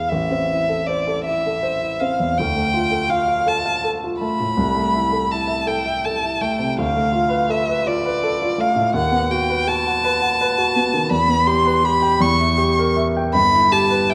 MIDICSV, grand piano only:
0, 0, Header, 1, 2, 480
1, 0, Start_track
1, 0, Key_signature, 0, "minor"
1, 0, Tempo, 763359
1, 72, Time_signature, 6, 3, 24, 8
1, 1031, Tempo, 738007
1, 3431, Tempo, 723764
1, 5831, Key_signature, 1, "minor"
1, 7271, Tempo, 750000
1, 9205, End_track
2, 0, Start_track
2, 0, Title_t, "Grand piano"
2, 0, Program_c, 0, 0
2, 0, Control_c, 0, 64, 127
2, 0, Note_on_c, 0, 40, 32
2, 0, Note_on_c, 0, 59, 26
2, 0, Note_on_c, 0, 64, 23
2, 0, Note_on_c, 0, 68, 26
2, 76, Note_on_c, 0, 33, 37
2, 84, Control_c, 0, 64, 0
2, 86, Note_off_c, 0, 59, 0
2, 87, Note_off_c, 0, 64, 0
2, 87, Note_off_c, 0, 68, 0
2, 91, Note_off_c, 0, 40, 0
2, 171, Control_c, 0, 64, 127
2, 194, Note_on_c, 0, 60, 26
2, 321, Note_on_c, 0, 64, 33
2, 386, Note_off_c, 0, 60, 0
2, 435, Note_on_c, 0, 69, 28
2, 510, Note_off_c, 0, 64, 0
2, 558, Note_on_c, 0, 72, 34
2, 627, Note_off_c, 0, 69, 0
2, 676, Note_on_c, 0, 69, 33
2, 748, Note_off_c, 0, 72, 0
2, 802, Note_on_c, 0, 64, 36
2, 866, Note_off_c, 0, 69, 0
2, 921, Note_on_c, 0, 69, 29
2, 987, Note_off_c, 0, 64, 0
2, 1025, Note_on_c, 0, 72, 35
2, 1106, Note_off_c, 0, 69, 0
2, 1143, Note_on_c, 0, 64, 31
2, 1219, Note_off_c, 0, 72, 0
2, 1274, Note_on_c, 0, 60, 30
2, 1337, Note_off_c, 0, 64, 0
2, 1393, Note_on_c, 0, 40, 29
2, 1461, Note_off_c, 0, 60, 0
2, 1482, Note_off_c, 0, 33, 0
2, 1509, Note_off_c, 0, 40, 0
2, 1516, Control_c, 0, 64, 0
2, 1522, Note_on_c, 0, 38, 35
2, 1628, Note_on_c, 0, 57, 25
2, 1634, Control_c, 0, 64, 127
2, 1744, Note_on_c, 0, 65, 36
2, 1819, Note_off_c, 0, 57, 0
2, 1857, Note_on_c, 0, 69, 29
2, 1937, Note_off_c, 0, 65, 0
2, 1978, Note_on_c, 0, 65, 33
2, 2053, Note_off_c, 0, 69, 0
2, 2099, Note_on_c, 0, 77, 32
2, 2174, Note_off_c, 0, 65, 0
2, 2216, Note_on_c, 0, 69, 37
2, 2295, Note_off_c, 0, 77, 0
2, 2342, Note_on_c, 0, 77, 30
2, 2414, Note_off_c, 0, 69, 0
2, 2462, Note_on_c, 0, 69, 34
2, 2537, Note_off_c, 0, 77, 0
2, 2591, Note_on_c, 0, 65, 29
2, 2658, Note_off_c, 0, 69, 0
2, 2704, Note_on_c, 0, 57, 31
2, 2782, Note_off_c, 0, 65, 0
2, 2828, Note_on_c, 0, 45, 29
2, 2899, Note_off_c, 0, 57, 0
2, 2932, Note_off_c, 0, 38, 0
2, 2937, Note_on_c, 0, 36, 41
2, 2949, Note_off_c, 0, 45, 0
2, 2959, Control_c, 0, 64, 0
2, 3052, Note_on_c, 0, 57, 28
2, 3074, Control_c, 0, 64, 127
2, 3177, Note_on_c, 0, 64, 36
2, 3253, Note_off_c, 0, 57, 0
2, 3294, Note_on_c, 0, 69, 32
2, 3375, Note_off_c, 0, 64, 0
2, 3422, Note_on_c, 0, 64, 35
2, 3495, Note_off_c, 0, 69, 0
2, 3528, Note_on_c, 0, 76, 34
2, 3620, Note_off_c, 0, 64, 0
2, 3653, Note_on_c, 0, 69, 38
2, 3734, Note_off_c, 0, 76, 0
2, 3782, Note_on_c, 0, 76, 33
2, 3856, Note_off_c, 0, 69, 0
2, 3911, Note_on_c, 0, 69, 33
2, 3980, Note_off_c, 0, 76, 0
2, 4025, Note_on_c, 0, 64, 31
2, 4104, Note_off_c, 0, 69, 0
2, 4149, Note_on_c, 0, 57, 34
2, 4221, Note_off_c, 0, 64, 0
2, 4267, Note_on_c, 0, 48, 32
2, 4344, Note_off_c, 0, 57, 0
2, 4362, Note_off_c, 0, 36, 0
2, 4391, Note_off_c, 0, 48, 0
2, 4396, Note_on_c, 0, 38, 40
2, 4406, Control_c, 0, 64, 0
2, 4510, Control_c, 0, 64, 127
2, 4513, Note_on_c, 0, 57, 30
2, 4621, Note_on_c, 0, 65, 37
2, 4707, Note_off_c, 0, 57, 0
2, 4731, Note_on_c, 0, 71, 38
2, 4822, Note_off_c, 0, 65, 0
2, 4865, Note_on_c, 0, 69, 39
2, 4938, Note_off_c, 0, 71, 0
2, 4998, Note_on_c, 0, 71, 33
2, 5065, Note_off_c, 0, 69, 0
2, 5106, Note_on_c, 0, 65, 40
2, 5192, Note_off_c, 0, 71, 0
2, 5240, Note_on_c, 0, 71, 39
2, 5305, Note_off_c, 0, 65, 0
2, 5357, Note_on_c, 0, 69, 42
2, 5430, Note_off_c, 0, 71, 0
2, 5479, Note_on_c, 0, 65, 35
2, 5547, Note_off_c, 0, 69, 0
2, 5587, Note_on_c, 0, 57, 36
2, 5666, Note_off_c, 0, 65, 0
2, 5706, Note_on_c, 0, 45, 35
2, 5780, Note_off_c, 0, 57, 0
2, 5805, Note_off_c, 0, 38, 0
2, 5823, Note_on_c, 0, 39, 49
2, 5828, Note_off_c, 0, 45, 0
2, 5840, Control_c, 0, 64, 0
2, 5945, Note_on_c, 0, 59, 33
2, 5952, Control_c, 0, 64, 127
2, 6067, Note_on_c, 0, 66, 42
2, 6137, Note_off_c, 0, 59, 0
2, 6195, Note_on_c, 0, 71, 38
2, 6258, Note_off_c, 0, 66, 0
2, 6312, Note_on_c, 0, 66, 41
2, 6382, Note_off_c, 0, 71, 0
2, 6440, Note_on_c, 0, 78, 39
2, 6501, Note_off_c, 0, 66, 0
2, 6557, Note_on_c, 0, 71, 45
2, 6626, Note_off_c, 0, 78, 0
2, 6673, Note_on_c, 0, 78, 42
2, 6745, Note_off_c, 0, 71, 0
2, 6800, Note_on_c, 0, 71, 46
2, 6863, Note_off_c, 0, 78, 0
2, 6914, Note_on_c, 0, 66, 38
2, 6986, Note_off_c, 0, 71, 0
2, 7033, Note_on_c, 0, 59, 37
2, 7103, Note_off_c, 0, 66, 0
2, 7149, Note_on_c, 0, 51, 35
2, 7223, Note_off_c, 0, 59, 0
2, 7238, Note_off_c, 0, 39, 0
2, 7261, Note_on_c, 0, 40, 44
2, 7269, Note_off_c, 0, 51, 0
2, 7280, Control_c, 0, 64, 0
2, 7374, Note_on_c, 0, 59, 33
2, 7388, Control_c, 0, 64, 127
2, 7495, Note_on_c, 0, 67, 42
2, 7568, Note_off_c, 0, 59, 0
2, 7614, Note_on_c, 0, 71, 38
2, 7687, Note_off_c, 0, 67, 0
2, 7731, Note_on_c, 0, 67, 43
2, 7806, Note_off_c, 0, 71, 0
2, 7848, Note_on_c, 0, 79, 39
2, 7925, Note_off_c, 0, 67, 0
2, 7951, Note_off_c, 0, 40, 0
2, 7963, Note_on_c, 0, 40, 57
2, 7971, Note_off_c, 0, 79, 0
2, 7987, Control_c, 0, 64, 0
2, 8084, Control_c, 0, 64, 127
2, 8092, Note_on_c, 0, 64, 37
2, 8203, Note_on_c, 0, 67, 47
2, 8285, Note_off_c, 0, 64, 0
2, 8336, Note_on_c, 0, 70, 41
2, 8401, Note_off_c, 0, 67, 0
2, 8452, Note_on_c, 0, 76, 39
2, 8529, Note_off_c, 0, 70, 0
2, 8580, Note_on_c, 0, 79, 46
2, 8647, Note_off_c, 0, 76, 0
2, 8669, Note_off_c, 0, 40, 0
2, 8693, Note_on_c, 0, 31, 47
2, 8699, Note_off_c, 0, 79, 0
2, 8707, Control_c, 0, 64, 0
2, 8806, Control_c, 0, 64, 127
2, 8809, Note_on_c, 0, 64, 33
2, 8936, Note_on_c, 0, 67, 46
2, 9010, Note_off_c, 0, 64, 0
2, 9052, Note_on_c, 0, 71, 39
2, 9136, Note_off_c, 0, 67, 0
2, 9177, Note_on_c, 0, 76, 40
2, 9205, Note_off_c, 0, 31, 0
2, 9205, Note_off_c, 0, 71, 0
2, 9205, Note_off_c, 0, 76, 0
2, 9205, End_track
0, 0, End_of_file